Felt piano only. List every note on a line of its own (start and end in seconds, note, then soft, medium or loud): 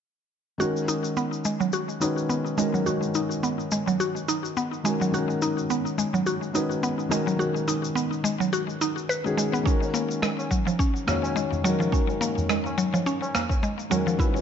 0.58 1.98 D#3 medium
0.58 1.98 G#3 medium
0.58 1.99 C#4 medium
0.58 1.99 F#4 medium
0.58 2.00 A#4 medium
2.00 2.55 D#3 medium
2.00 2.55 G#3 medium
2.00 2.55 C#4 medium
2.00 2.56 F#4 medium
2.00 2.56 B4 medium
2.57 2.83 D#3 medium
2.57 2.83 G#3 medium
2.57 2.84 C#4 medium
2.57 2.84 F#4 medium
2.57 2.84 A#4 loud
2.84 4.81 D#3 medium
2.84 4.81 G#3 medium
2.84 4.82 C#4 medium
2.84 4.83 F#4 medium
2.88 4.83 A#4 medium
4.83 5.09 D#3 medium
4.83 5.10 G#3 medium
4.83 5.10 C#4 medium
4.83 5.11 F#4 medium
4.83 5.11 A#4 medium
5.10 6.50 D#3 medium
5.10 6.51 G#3 medium
5.10 6.52 C#4 medium
5.10 6.52 F#4 medium
5.15 6.53 A#4 medium
6.53 7.07 D#3 medium
6.53 7.08 G#3 medium
6.53 7.08 C#4 medium
6.53 7.08 F#4 medium
6.53 7.09 B4 medium
7.09 7.35 D#3 medium
7.09 7.36 G#3 medium
7.09 7.36 C#4 medium
7.09 7.36 F#4 medium
7.09 7.37 A#4 medium
7.37 9.21 D#3 medium
7.37 9.21 G#3 medium
7.37 9.22 C#4 medium
7.37 9.22 F#4 medium
7.37 9.23 A#4 medium
9.24 9.62 D#3 medium
9.24 9.63 G#3 medium
9.24 9.63 C#4 medium
9.24 9.63 F#4 medium
9.24 9.64 G#4 medium
9.63 11.03 D#3 medium
9.63 11.04 G#3 medium
9.63 11.04 C#4 medium
9.63 11.05 F#4 medium
9.63 11.05 A#4 medium
11.06 11.61 D#3 medium
11.06 11.61 G#3 medium
11.06 11.61 C#4 medium
11.06 11.62 F#4 medium
11.06 11.62 C#5 medium
11.64 11.89 D#3 medium
11.64 11.89 G#3 medium
11.64 11.90 C#4 medium
11.64 11.90 F#4 medium
11.64 11.90 A#4 loud
11.90 13.87 D#3 medium
11.90 13.87 G#3 medium
11.90 13.88 C#4 medium
11.90 13.88 F#4 medium
11.95 13.89 A#4 medium
13.90 14.16 D#3 medium
13.90 14.16 G#3 medium
13.90 14.16 C#4 medium
13.90 14.16 F#4 medium
13.90 14.16 A#4 medium
14.17 14.41 D#3 medium
14.17 14.41 G#3 medium
14.17 14.41 C#4 medium
14.17 14.41 F#4 medium
14.21 14.41 B4 medium